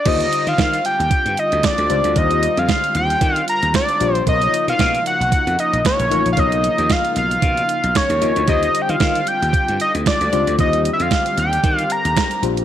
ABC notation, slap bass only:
X:1
M:4/4
L:1/16
Q:"Swing 16ths" 1/4=114
K:Eb
V:1 name="Slap bass" clef=bass
E,,2 z E, E,2 z E,, z G,, z D,, z D,, _D,, =D,, | E,,3 F,, z2 E,,2 E,2 z E,, z2 B,,,2 | =B,,,2 z =B,, B,,2 z B,,, z ^E,, z ^A,,, z A,,, =A,,, ^A,,, | =B,,,3 ^D,, z2 B,,,2 =B,,2 z B,,, z D,, D,, =D,, |
E,,2 z E, E,2 z E,, z G,, z D,, z D,, _D,, =D,, | E,,3 F,, z2 E,,2 E,2 z E,, z2 B,,,2 |]